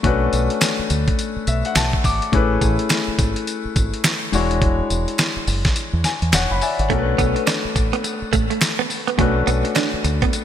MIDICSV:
0, 0, Header, 1, 7, 480
1, 0, Start_track
1, 0, Tempo, 571429
1, 37, Time_signature, 4, 2, 24, 8
1, 8772, End_track
2, 0, Start_track
2, 0, Title_t, "Grand piano"
2, 0, Program_c, 0, 0
2, 0, Control_c, 0, 64, 127
2, 27, Note_on_c, 0, 57, 85
2, 32, Note_on_c, 0, 61, 75
2, 36, Note_on_c, 0, 62, 75
2, 42, Note_on_c, 0, 66, 73
2, 46, Note_on_c, 0, 71, 91
2, 1241, Note_on_c, 0, 76, 75
2, 1376, Note_off_c, 0, 76, 0
2, 1389, Note_on_c, 0, 78, 75
2, 1473, Note_off_c, 0, 78, 0
2, 1482, Note_on_c, 0, 81, 77
2, 1703, Note_off_c, 0, 81, 0
2, 1720, Note_on_c, 0, 86, 69
2, 1918, Note_off_c, 0, 57, 0
2, 1921, Note_off_c, 0, 61, 0
2, 1923, Note_off_c, 0, 62, 0
2, 1926, Note_off_c, 0, 66, 0
2, 1928, Note_off_c, 0, 71, 0
2, 1942, Note_off_c, 0, 86, 0
2, 1950, Note_on_c, 0, 57, 80
2, 1955, Note_on_c, 0, 61, 68
2, 1960, Note_on_c, 0, 64, 74
2, 1965, Note_on_c, 0, 68, 74
2, 1968, Control_c, 0, 64, 0
2, 1970, Note_on_c, 0, 71, 91
2, 2120, Control_c, 0, 64, 127
2, 3600, Note_off_c, 0, 57, 0
2, 3603, Note_off_c, 0, 61, 0
2, 3605, Note_off_c, 0, 64, 0
2, 3607, Note_off_c, 0, 68, 0
2, 3610, Note_off_c, 0, 71, 0
2, 3631, Note_on_c, 0, 56, 79
2, 3636, Note_on_c, 0, 62, 69
2, 3640, Note_on_c, 0, 64, 70
2, 3645, Note_on_c, 0, 66, 68
2, 3647, Control_c, 0, 64, 0
2, 3651, Note_on_c, 0, 73, 79
2, 3775, Control_c, 0, 64, 127
2, 5080, Note_on_c, 0, 80, 74
2, 5291, Note_off_c, 0, 73, 0
2, 5302, Note_off_c, 0, 80, 0
2, 5320, Note_on_c, 0, 78, 82
2, 5325, Note_on_c, 0, 73, 57
2, 5461, Note_off_c, 0, 73, 0
2, 5461, Note_off_c, 0, 78, 0
2, 5469, Note_on_c, 0, 83, 71
2, 5473, Note_on_c, 0, 78, 61
2, 5520, Note_off_c, 0, 56, 0
2, 5523, Note_off_c, 0, 62, 0
2, 5525, Note_off_c, 0, 64, 0
2, 5528, Note_off_c, 0, 66, 0
2, 5555, Note_off_c, 0, 83, 0
2, 5557, Note_off_c, 0, 78, 0
2, 5561, Note_on_c, 0, 76, 68
2, 5562, Note_on_c, 0, 80, 70
2, 5567, Note_on_c, 0, 74, 60
2, 5700, Note_off_c, 0, 80, 0
2, 5702, Note_off_c, 0, 74, 0
2, 5709, Note_on_c, 0, 78, 64
2, 5714, Note_on_c, 0, 73, 53
2, 5782, Note_off_c, 0, 76, 0
2, 5792, Note_on_c, 0, 57, 85
2, 5797, Note_on_c, 0, 61, 72
2, 5802, Note_on_c, 0, 62, 70
2, 5806, Control_c, 0, 64, 0
2, 5807, Note_on_c, 0, 66, 68
2, 5812, Note_on_c, 0, 70, 71
2, 5866, Note_on_c, 0, 71, 87
2, 5872, Note_off_c, 0, 70, 0
2, 5935, Note_off_c, 0, 78, 0
2, 5937, Note_off_c, 0, 73, 0
2, 5957, Control_c, 0, 64, 127
2, 7681, Note_off_c, 0, 57, 0
2, 7683, Note_off_c, 0, 61, 0
2, 7686, Note_off_c, 0, 62, 0
2, 7688, Note_off_c, 0, 66, 0
2, 7709, Note_on_c, 0, 57, 77
2, 7714, Note_on_c, 0, 61, 70
2, 7716, Note_off_c, 0, 71, 0
2, 7719, Note_on_c, 0, 62, 76
2, 7724, Note_on_c, 0, 66, 74
2, 7729, Note_on_c, 0, 71, 85
2, 8772, Note_off_c, 0, 57, 0
2, 8772, Note_off_c, 0, 61, 0
2, 8772, Note_off_c, 0, 62, 0
2, 8772, Note_off_c, 0, 66, 0
2, 8772, Note_off_c, 0, 71, 0
2, 8772, End_track
3, 0, Start_track
3, 0, Title_t, "Clean electric guitar"
3, 0, Program_c, 1, 27
3, 5795, Note_on_c, 1, 57, 85
3, 5894, Note_off_c, 1, 57, 0
3, 6035, Note_on_c, 1, 59, 80
3, 6134, Note_off_c, 1, 59, 0
3, 6277, Note_on_c, 1, 62, 90
3, 6375, Note_off_c, 1, 62, 0
3, 6663, Note_on_c, 1, 59, 76
3, 6725, Note_off_c, 1, 59, 0
3, 6994, Note_on_c, 1, 57, 80
3, 7093, Note_off_c, 1, 57, 0
3, 7143, Note_on_c, 1, 57, 80
3, 7205, Note_off_c, 1, 57, 0
3, 7384, Note_on_c, 1, 59, 80
3, 7446, Note_off_c, 1, 59, 0
3, 7623, Note_on_c, 1, 59, 78
3, 7685, Note_off_c, 1, 59, 0
3, 7716, Note_on_c, 1, 57, 93
3, 7815, Note_off_c, 1, 57, 0
3, 7956, Note_on_c, 1, 59, 80
3, 8054, Note_off_c, 1, 59, 0
3, 8197, Note_on_c, 1, 62, 84
3, 8295, Note_off_c, 1, 62, 0
3, 8587, Note_on_c, 1, 59, 71
3, 8647, Note_off_c, 1, 59, 0
3, 8772, End_track
4, 0, Start_track
4, 0, Title_t, "Fingered electric bass"
4, 0, Program_c, 2, 33
4, 35, Note_on_c, 2, 35, 111
4, 234, Note_off_c, 2, 35, 0
4, 278, Note_on_c, 2, 35, 106
4, 399, Note_off_c, 2, 35, 0
4, 759, Note_on_c, 2, 38, 95
4, 880, Note_off_c, 2, 38, 0
4, 1238, Note_on_c, 2, 35, 89
4, 1359, Note_off_c, 2, 35, 0
4, 1478, Note_on_c, 2, 35, 92
4, 1599, Note_off_c, 2, 35, 0
4, 1716, Note_on_c, 2, 32, 83
4, 1838, Note_off_c, 2, 32, 0
4, 1958, Note_on_c, 2, 33, 110
4, 2155, Note_off_c, 2, 33, 0
4, 2197, Note_on_c, 2, 33, 104
4, 2319, Note_off_c, 2, 33, 0
4, 2677, Note_on_c, 2, 32, 104
4, 2799, Note_off_c, 2, 32, 0
4, 3158, Note_on_c, 2, 32, 91
4, 3279, Note_off_c, 2, 32, 0
4, 3637, Note_on_c, 2, 28, 92
4, 4033, Note_off_c, 2, 28, 0
4, 4118, Note_on_c, 2, 28, 88
4, 4239, Note_off_c, 2, 28, 0
4, 4598, Note_on_c, 2, 30, 91
4, 4719, Note_off_c, 2, 30, 0
4, 4984, Note_on_c, 2, 40, 98
4, 5060, Note_off_c, 2, 40, 0
4, 5226, Note_on_c, 2, 40, 95
4, 5301, Note_off_c, 2, 40, 0
4, 5317, Note_on_c, 2, 28, 92
4, 5438, Note_off_c, 2, 28, 0
4, 5464, Note_on_c, 2, 30, 88
4, 5540, Note_off_c, 2, 30, 0
4, 5704, Note_on_c, 2, 32, 89
4, 5780, Note_off_c, 2, 32, 0
4, 5797, Note_on_c, 2, 35, 107
4, 5995, Note_off_c, 2, 35, 0
4, 6037, Note_on_c, 2, 35, 101
4, 6159, Note_off_c, 2, 35, 0
4, 6517, Note_on_c, 2, 33, 100
4, 6639, Note_off_c, 2, 33, 0
4, 6998, Note_on_c, 2, 33, 102
4, 7120, Note_off_c, 2, 33, 0
4, 7718, Note_on_c, 2, 35, 107
4, 7915, Note_off_c, 2, 35, 0
4, 7959, Note_on_c, 2, 35, 97
4, 8080, Note_off_c, 2, 35, 0
4, 8438, Note_on_c, 2, 38, 96
4, 8559, Note_off_c, 2, 38, 0
4, 8772, End_track
5, 0, Start_track
5, 0, Title_t, "Muted clean electric guitar strokes"
5, 6182, Note_on_c, 9, 29, 43
5, 6266, Note_off_c, 9, 29, 0
5, 6516, Note_on_c, 9, 29, 47
5, 6600, Note_off_c, 9, 29, 0
5, 6755, Note_on_c, 9, 29, 50
5, 6839, Note_off_c, 9, 29, 0
5, 7474, Note_on_c, 9, 29, 44
5, 7558, Note_off_c, 9, 29, 0
5, 8104, Note_on_c, 9, 29, 45
5, 8188, Note_off_c, 9, 29, 0
5, 8438, Note_on_c, 9, 29, 50
5, 8522, Note_off_c, 9, 29, 0
5, 8680, Note_on_c, 9, 29, 51
5, 8764, Note_off_c, 9, 29, 0
5, 8772, End_track
6, 0, Start_track
6, 0, Title_t, "Muted fingered electric bass strokes"
6, 665, Note_on_c, 9, 29, 50
6, 749, Note_off_c, 9, 29, 0
6, 1146, Note_on_c, 9, 29, 52
6, 1230, Note_off_c, 9, 29, 0
6, 2587, Note_on_c, 9, 29, 51
6, 2671, Note_off_c, 9, 29, 0
6, 3067, Note_on_c, 9, 29, 51
6, 3151, Note_off_c, 9, 29, 0
6, 4506, Note_on_c, 9, 29, 53
6, 4590, Note_off_c, 9, 29, 0
6, 6425, Note_on_c, 9, 29, 52
6, 6509, Note_off_c, 9, 29, 0
6, 6905, Note_on_c, 9, 29, 53
6, 6989, Note_off_c, 9, 29, 0
6, 8347, Note_on_c, 9, 29, 50
6, 8431, Note_off_c, 9, 29, 0
6, 8772, End_track
7, 0, Start_track
7, 0, Title_t, "Drums"
7, 34, Note_on_c, 9, 42, 68
7, 35, Note_on_c, 9, 36, 113
7, 118, Note_off_c, 9, 42, 0
7, 119, Note_off_c, 9, 36, 0
7, 275, Note_on_c, 9, 42, 61
7, 275, Note_on_c, 9, 54, 62
7, 359, Note_off_c, 9, 42, 0
7, 359, Note_off_c, 9, 54, 0
7, 422, Note_on_c, 9, 42, 60
7, 506, Note_off_c, 9, 42, 0
7, 513, Note_on_c, 9, 42, 84
7, 514, Note_on_c, 9, 54, 100
7, 516, Note_on_c, 9, 39, 85
7, 517, Note_on_c, 9, 38, 127
7, 597, Note_off_c, 9, 42, 0
7, 598, Note_off_c, 9, 54, 0
7, 600, Note_off_c, 9, 39, 0
7, 601, Note_off_c, 9, 38, 0
7, 756, Note_on_c, 9, 42, 77
7, 757, Note_on_c, 9, 54, 70
7, 840, Note_off_c, 9, 42, 0
7, 841, Note_off_c, 9, 54, 0
7, 904, Note_on_c, 9, 36, 95
7, 904, Note_on_c, 9, 42, 55
7, 988, Note_off_c, 9, 36, 0
7, 988, Note_off_c, 9, 42, 0
7, 997, Note_on_c, 9, 42, 74
7, 997, Note_on_c, 9, 54, 63
7, 1081, Note_off_c, 9, 42, 0
7, 1081, Note_off_c, 9, 54, 0
7, 1236, Note_on_c, 9, 42, 65
7, 1238, Note_on_c, 9, 54, 71
7, 1320, Note_off_c, 9, 42, 0
7, 1322, Note_off_c, 9, 54, 0
7, 1385, Note_on_c, 9, 42, 57
7, 1469, Note_off_c, 9, 42, 0
7, 1475, Note_on_c, 9, 38, 125
7, 1475, Note_on_c, 9, 42, 58
7, 1475, Note_on_c, 9, 54, 109
7, 1477, Note_on_c, 9, 39, 95
7, 1559, Note_off_c, 9, 38, 0
7, 1559, Note_off_c, 9, 42, 0
7, 1559, Note_off_c, 9, 54, 0
7, 1561, Note_off_c, 9, 39, 0
7, 1624, Note_on_c, 9, 36, 94
7, 1708, Note_off_c, 9, 36, 0
7, 1716, Note_on_c, 9, 36, 100
7, 1716, Note_on_c, 9, 46, 69
7, 1719, Note_on_c, 9, 54, 68
7, 1800, Note_off_c, 9, 36, 0
7, 1800, Note_off_c, 9, 46, 0
7, 1803, Note_off_c, 9, 54, 0
7, 1865, Note_on_c, 9, 42, 58
7, 1949, Note_off_c, 9, 42, 0
7, 1956, Note_on_c, 9, 42, 64
7, 1957, Note_on_c, 9, 36, 109
7, 2040, Note_off_c, 9, 42, 0
7, 2041, Note_off_c, 9, 36, 0
7, 2196, Note_on_c, 9, 36, 101
7, 2196, Note_on_c, 9, 42, 58
7, 2197, Note_on_c, 9, 54, 66
7, 2280, Note_off_c, 9, 36, 0
7, 2280, Note_off_c, 9, 42, 0
7, 2281, Note_off_c, 9, 54, 0
7, 2344, Note_on_c, 9, 42, 61
7, 2428, Note_off_c, 9, 42, 0
7, 2435, Note_on_c, 9, 42, 77
7, 2435, Note_on_c, 9, 54, 93
7, 2436, Note_on_c, 9, 39, 91
7, 2438, Note_on_c, 9, 38, 126
7, 2519, Note_off_c, 9, 42, 0
7, 2519, Note_off_c, 9, 54, 0
7, 2520, Note_off_c, 9, 39, 0
7, 2522, Note_off_c, 9, 38, 0
7, 2676, Note_on_c, 9, 36, 102
7, 2676, Note_on_c, 9, 42, 76
7, 2677, Note_on_c, 9, 54, 65
7, 2760, Note_off_c, 9, 36, 0
7, 2760, Note_off_c, 9, 42, 0
7, 2761, Note_off_c, 9, 54, 0
7, 2824, Note_on_c, 9, 42, 60
7, 2908, Note_off_c, 9, 42, 0
7, 2918, Note_on_c, 9, 42, 78
7, 2918, Note_on_c, 9, 54, 67
7, 3002, Note_off_c, 9, 42, 0
7, 3002, Note_off_c, 9, 54, 0
7, 3157, Note_on_c, 9, 42, 65
7, 3158, Note_on_c, 9, 36, 109
7, 3159, Note_on_c, 9, 54, 72
7, 3241, Note_off_c, 9, 42, 0
7, 3242, Note_off_c, 9, 36, 0
7, 3243, Note_off_c, 9, 54, 0
7, 3306, Note_on_c, 9, 42, 57
7, 3390, Note_off_c, 9, 42, 0
7, 3395, Note_on_c, 9, 54, 107
7, 3396, Note_on_c, 9, 38, 123
7, 3396, Note_on_c, 9, 42, 58
7, 3397, Note_on_c, 9, 39, 103
7, 3479, Note_off_c, 9, 54, 0
7, 3480, Note_off_c, 9, 38, 0
7, 3480, Note_off_c, 9, 42, 0
7, 3481, Note_off_c, 9, 39, 0
7, 3637, Note_on_c, 9, 46, 70
7, 3640, Note_on_c, 9, 54, 72
7, 3721, Note_off_c, 9, 46, 0
7, 3724, Note_off_c, 9, 54, 0
7, 3787, Note_on_c, 9, 42, 57
7, 3871, Note_off_c, 9, 42, 0
7, 3878, Note_on_c, 9, 36, 119
7, 3878, Note_on_c, 9, 42, 65
7, 3962, Note_off_c, 9, 36, 0
7, 3962, Note_off_c, 9, 42, 0
7, 4119, Note_on_c, 9, 42, 62
7, 4120, Note_on_c, 9, 54, 66
7, 4203, Note_off_c, 9, 42, 0
7, 4204, Note_off_c, 9, 54, 0
7, 4267, Note_on_c, 9, 42, 60
7, 4351, Note_off_c, 9, 42, 0
7, 4356, Note_on_c, 9, 42, 77
7, 4357, Note_on_c, 9, 54, 95
7, 4358, Note_on_c, 9, 39, 85
7, 4360, Note_on_c, 9, 38, 127
7, 4440, Note_off_c, 9, 42, 0
7, 4441, Note_off_c, 9, 54, 0
7, 4442, Note_off_c, 9, 39, 0
7, 4444, Note_off_c, 9, 38, 0
7, 4598, Note_on_c, 9, 46, 73
7, 4599, Note_on_c, 9, 54, 63
7, 4682, Note_off_c, 9, 46, 0
7, 4683, Note_off_c, 9, 54, 0
7, 4744, Note_on_c, 9, 38, 73
7, 4745, Note_on_c, 9, 42, 51
7, 4746, Note_on_c, 9, 36, 102
7, 4828, Note_off_c, 9, 38, 0
7, 4829, Note_off_c, 9, 42, 0
7, 4830, Note_off_c, 9, 36, 0
7, 4837, Note_on_c, 9, 42, 78
7, 4837, Note_on_c, 9, 54, 67
7, 4921, Note_off_c, 9, 42, 0
7, 4921, Note_off_c, 9, 54, 0
7, 5075, Note_on_c, 9, 38, 72
7, 5076, Note_on_c, 9, 42, 66
7, 5078, Note_on_c, 9, 54, 75
7, 5159, Note_off_c, 9, 38, 0
7, 5160, Note_off_c, 9, 42, 0
7, 5162, Note_off_c, 9, 54, 0
7, 5225, Note_on_c, 9, 42, 55
7, 5309, Note_off_c, 9, 42, 0
7, 5316, Note_on_c, 9, 38, 114
7, 5316, Note_on_c, 9, 42, 62
7, 5316, Note_on_c, 9, 54, 108
7, 5317, Note_on_c, 9, 39, 94
7, 5400, Note_off_c, 9, 38, 0
7, 5400, Note_off_c, 9, 42, 0
7, 5400, Note_off_c, 9, 54, 0
7, 5401, Note_off_c, 9, 39, 0
7, 5556, Note_on_c, 9, 46, 71
7, 5559, Note_on_c, 9, 54, 64
7, 5640, Note_off_c, 9, 46, 0
7, 5643, Note_off_c, 9, 54, 0
7, 5706, Note_on_c, 9, 42, 55
7, 5790, Note_off_c, 9, 42, 0
7, 5796, Note_on_c, 9, 42, 66
7, 5797, Note_on_c, 9, 36, 106
7, 5880, Note_off_c, 9, 42, 0
7, 5881, Note_off_c, 9, 36, 0
7, 6037, Note_on_c, 9, 36, 97
7, 6038, Note_on_c, 9, 42, 62
7, 6039, Note_on_c, 9, 54, 61
7, 6121, Note_off_c, 9, 36, 0
7, 6122, Note_off_c, 9, 42, 0
7, 6123, Note_off_c, 9, 54, 0
7, 6183, Note_on_c, 9, 42, 55
7, 6267, Note_off_c, 9, 42, 0
7, 6274, Note_on_c, 9, 42, 78
7, 6275, Note_on_c, 9, 54, 95
7, 6277, Note_on_c, 9, 38, 127
7, 6277, Note_on_c, 9, 39, 87
7, 6358, Note_off_c, 9, 42, 0
7, 6359, Note_off_c, 9, 54, 0
7, 6361, Note_off_c, 9, 38, 0
7, 6361, Note_off_c, 9, 39, 0
7, 6516, Note_on_c, 9, 36, 106
7, 6517, Note_on_c, 9, 42, 71
7, 6518, Note_on_c, 9, 54, 69
7, 6600, Note_off_c, 9, 36, 0
7, 6601, Note_off_c, 9, 42, 0
7, 6602, Note_off_c, 9, 54, 0
7, 6664, Note_on_c, 9, 42, 56
7, 6748, Note_off_c, 9, 42, 0
7, 6756, Note_on_c, 9, 42, 74
7, 6756, Note_on_c, 9, 54, 71
7, 6840, Note_off_c, 9, 42, 0
7, 6840, Note_off_c, 9, 54, 0
7, 6996, Note_on_c, 9, 42, 66
7, 6997, Note_on_c, 9, 36, 100
7, 6998, Note_on_c, 9, 54, 77
7, 7080, Note_off_c, 9, 42, 0
7, 7081, Note_off_c, 9, 36, 0
7, 7082, Note_off_c, 9, 54, 0
7, 7146, Note_on_c, 9, 42, 58
7, 7230, Note_off_c, 9, 42, 0
7, 7236, Note_on_c, 9, 39, 91
7, 7236, Note_on_c, 9, 54, 98
7, 7237, Note_on_c, 9, 38, 127
7, 7237, Note_on_c, 9, 42, 60
7, 7320, Note_off_c, 9, 39, 0
7, 7320, Note_off_c, 9, 54, 0
7, 7321, Note_off_c, 9, 38, 0
7, 7321, Note_off_c, 9, 42, 0
7, 7477, Note_on_c, 9, 46, 70
7, 7480, Note_on_c, 9, 54, 68
7, 7561, Note_off_c, 9, 46, 0
7, 7564, Note_off_c, 9, 54, 0
7, 7626, Note_on_c, 9, 42, 54
7, 7710, Note_off_c, 9, 42, 0
7, 7717, Note_on_c, 9, 36, 107
7, 7717, Note_on_c, 9, 42, 67
7, 7801, Note_off_c, 9, 36, 0
7, 7801, Note_off_c, 9, 42, 0
7, 7958, Note_on_c, 9, 42, 62
7, 7959, Note_on_c, 9, 54, 61
7, 8042, Note_off_c, 9, 42, 0
7, 8043, Note_off_c, 9, 54, 0
7, 8105, Note_on_c, 9, 42, 59
7, 8189, Note_off_c, 9, 42, 0
7, 8196, Note_on_c, 9, 39, 87
7, 8196, Note_on_c, 9, 42, 74
7, 8196, Note_on_c, 9, 54, 97
7, 8199, Note_on_c, 9, 38, 127
7, 8280, Note_off_c, 9, 39, 0
7, 8280, Note_off_c, 9, 42, 0
7, 8280, Note_off_c, 9, 54, 0
7, 8283, Note_off_c, 9, 38, 0
7, 8437, Note_on_c, 9, 42, 75
7, 8438, Note_on_c, 9, 54, 66
7, 8521, Note_off_c, 9, 42, 0
7, 8522, Note_off_c, 9, 54, 0
7, 8585, Note_on_c, 9, 36, 104
7, 8585, Note_on_c, 9, 42, 57
7, 8669, Note_off_c, 9, 36, 0
7, 8669, Note_off_c, 9, 42, 0
7, 8677, Note_on_c, 9, 54, 74
7, 8678, Note_on_c, 9, 42, 73
7, 8761, Note_off_c, 9, 54, 0
7, 8762, Note_off_c, 9, 42, 0
7, 8772, End_track
0, 0, End_of_file